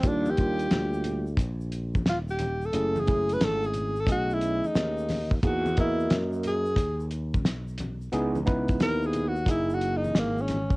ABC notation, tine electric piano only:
X:1
M:4/4
L:1/8
Q:"Swing 16ths" 1/4=89
K:Elyd
V:1 name="Tine electric piano"
[=G,A,=D^E] [G,A,DE]2 z4 z | [=A,CEG] [A,CEG]2 z [A,CGd]3 z | [A,DFG] [A,FAd]2 z4 z | [B,DEG] [B,DEB]2 z [A,DEG]3 z |]